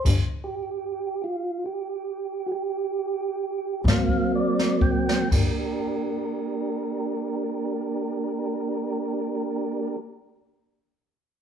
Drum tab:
CC |x-----------------------|x-----------------------|
HH |x-----------------------|------------------------|
SD |------------------o--o-o|------------------------|
BD |o-----------------oo--o-|o-----------------------|